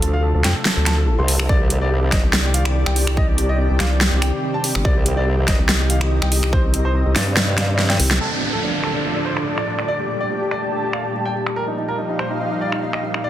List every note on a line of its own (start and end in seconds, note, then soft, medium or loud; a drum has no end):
0.00 0.33 D2 loud
0.00 1.45 C3 medium
0.00 1.45 F3 medium
0.00 1.45 A3 medium
0.00 1.45 D4 medium
0.00 2.39 D4 medium
0.00 1.45 F4 loud
0.00 3.00 A4 medium
0.00 0.10 A4 medium
0.00 closed hi-hat medium
0.14 0.20 F5 medium
0.23 0.31 A4 medium
0.34 0.43 D2 loud
0.34 0.41 A4 medium
0.44 0.54 F2 loud
0.44 0.52 G5 medium
0.44 finger snap medium
0.44 snare medium
0.44 closed hi-hat medium
0.56 0.62 A4 medium
0.65 0.73 A4 medium
0.65 snare loud
0.76 1.17 D2 loud
0.76 0.83 A4 medium
0.86 0.94 A5 medium
0.86 finger snap medium
0.86 snare medium
0.86 closed hi-hat medium
0.98 1.04 A4 medium
1.07 1.15 A4 medium
1.19 1.48 C2 loud
1.19 1.25 C6 medium
1.28 1.36 A4 medium
1.28 open hi-hat medium
1.39 1.46 A4 medium
1.39 finger snap medium
1.49 2.11 C2 loud
1.49 8.17 C3 medium
1.49 8.17 D#3 medium
1.49 8.17 G3 medium
1.49 8.88 C4 medium
1.49 4.82 D4 medium
1.49 8.17 G4 loud
1.49 1.57 D5 loud
1.49 kick loud
1.60 1.67 G4 medium
1.66 8.88 G4 medium
1.66 1.78 G4 medium
1.66 closed hi-hat medium
1.71 5.30 D5 medium
1.81 1.88 D5 medium
1.91 1.99 G4 medium
2.02 2.09 G4 medium
2.12 2.22 G1 medium
2.12 2.20 D#5 medium
2.12 finger snap medium
2.12 kick loud
2.12 snare medium
2.12 closed hi-hat medium
2.23 2.85 C2 loud
2.23 2.30 G4 medium
2.33 snare loud
2.44 2.51 G4 medium
2.54 2.62 F5 medium
2.54 closed hi-hat medium
2.65 finger snap medium
2.75 2.83 G4 medium
2.86 3.69 C2 loud
2.86 2.93 G5 medium
2.86 finger snap medium
2.96 3.04 G4 medium
2.96 open hi-hat loud
3.07 3.14 G4 medium
3.07 finger snap medium
3.17 3.24 D#5 loud
3.17 kick loud
3.28 3.35 G4 medium
3.38 3.45 G4 medium
3.38 closed hi-hat medium
3.49 3.56 D#5 loud
3.59 3.66 G4 medium
3.70 3.78 C2 loud
3.70 3.77 G4 medium
3.80 4.10 C2 loud
3.80 3.87 F5 loud
3.80 finger snap medium
3.80 snare medium
3.80 closed hi-hat medium
3.91 3.98 G4 medium
4.01 4.08 G4 medium
4.01 snare loud
4.12 4.31 C2 loud
4.12 4.19 G4 medium
4.22 4.29 G5 medium
4.22 finger snap medium
4.22 closed hi-hat medium
4.33 4.40 G4 medium
4.43 4.50 G4 medium
4.54 4.61 A5 medium
4.64 4.71 G4 medium
4.64 open hi-hat loud
4.75 4.83 G1 loud
4.75 4.82 G4 medium
4.75 finger snap medium
4.85 5.46 C2 loud
4.85 8.17 D#4 medium
4.85 4.92 D5 loud
4.85 kick loud
4.96 5.03 G4 medium
5.06 5.13 G4 medium
5.06 closed hi-hat medium
5.17 5.24 D5 loud
5.17 8.21 D#5 medium
5.27 5.34 G4 medium
5.38 5.45 G4 medium
5.48 5.57 G1 loud
5.48 5.55 D#5 loud
5.48 finger snap medium
5.48 kick loud
5.48 snare medium
5.48 closed hi-hat medium
5.59 6.20 C2 loud
5.59 5.66 G4 medium
5.69 5.76 G4 medium
5.69 snare loud
5.80 5.87 G4 medium
5.90 5.97 F5 medium
5.90 closed hi-hat medium
6.01 6.08 G4 medium
6.01 finger snap medium
6.11 6.18 G4 medium
6.22 7.04 C2 loud
6.22 6.28 G5 loud
6.22 finger snap medium
6.32 6.39 G4 medium
6.32 open hi-hat loud
6.43 6.49 G4 medium
6.43 finger snap medium
6.53 6.60 C5 loud
6.53 kick loud
6.64 6.70 C4 medium
6.74 6.81 C4 medium
6.74 closed hi-hat medium
6.85 6.91 C5 medium
6.95 7.02 C4 medium
7.06 7.14 C2 loud
7.06 7.12 C4 medium
7.16 7.98 G2 medium
7.16 7.23 D5 medium
7.16 finger snap medium
7.16 snare medium
7.16 open hi-hat medium
7.27 7.33 C4 medium
7.37 7.44 C4 medium
7.37 snare loud
7.48 7.54 C4 medium
7.58 7.65 F5 medium
7.58 finger snap medium
7.58 snare medium
7.58 closed hi-hat medium
7.69 7.75 C4 medium
7.79 7.86 C4 medium
7.79 snare medium
7.90 7.96 G5 medium
7.90 snare medium
7.90 closed hi-hat soft
8.00 8.19 C2 loud
8.00 8.07 C4 medium
8.00 open hi-hat loud
8.11 8.17 C4 medium
8.11 snare medium
8.21 9.87 A2 medium
8.21 9.87 D3 medium
8.21 9.87 F3 medium
8.21 11.53 D4 medium
8.21 10.56 D4 medium
8.21 9.87 F4 medium
8.21 8.28 A4 medium
8.21 crash medium
8.21 downlifter medium
8.32 8.38 D4 medium
8.42 8.49 D4 medium
8.47 10.56 A4 medium
8.53 8.59 A4 medium
8.62 8.70 D4 medium
8.74 8.80 D4 medium
8.74 12.20 D5 medium
8.84 8.91 A4 medium
8.84 finger snap soft
8.95 9.01 D4 medium
9.05 9.12 D4 medium
9.16 9.22 D4 medium
9.25 9.33 C5 medium
9.37 9.43 D4 medium
9.37 finger snap medium
9.46 9.54 D4 medium
9.58 9.64 D5 medium
9.58 finger snap medium
9.67 9.75 D4 medium
9.79 9.85 D4 medium
9.79 finger snap medium
9.88 13.30 A#2 medium
9.88 13.30 G3 medium
9.88 11.55 A3 medium
9.88 11.55 G4 medium
9.88 12.24 G4 medium
9.88 9.96 D5 medium
10.00 10.06 G4 medium
10.09 10.17 G4 medium
10.21 10.27 D5 medium
10.21 12.24 A5 medium
10.30 10.38 G4 medium
10.42 10.48 G4 medium
10.51 10.59 D5 medium
10.51 finger snap soft
10.63 10.69 G4 medium
10.72 10.80 G4 medium
10.84 10.90 G4 medium
10.93 11.01 F5 medium
10.93 finger snap medium
11.05 11.11 G4 medium
11.14 11.22 G4 medium
11.26 11.32 G5 medium
11.35 11.43 G4 medium
11.46 11.53 G4 medium
11.46 finger snap medium
11.56 13.22 F3 medium
11.56 13.22 D#4 medium
11.56 13.24 D#4 medium
11.56 13.30 G4 medium
11.56 11.64 A#4 loud
11.68 11.74 D#4 medium
11.76 11.85 D#4 medium
11.76 13.30 F5 medium
11.88 11.95 A#4 medium
11.98 12.06 D#4 medium
12.09 12.16 D#4 medium
12.19 12.27 C5 medium
12.19 finger snap medium
12.30 12.37 D#4 medium
12.40 12.48 D#4 medium
12.51 12.58 D#4 medium
12.61 12.69 D5 medium
12.72 12.79 D#4 medium
12.72 finger snap medium
12.82 12.90 D#4 medium
12.93 13.00 D#5 medium
12.93 finger snap medium
13.03 13.11 D#4 medium
13.14 13.21 D#4 medium
13.14 finger snap medium
13.24 13.30 A3 medium
13.24 13.30 D4 medium
13.24 13.30 G4 medium
13.24 13.30 D5 medium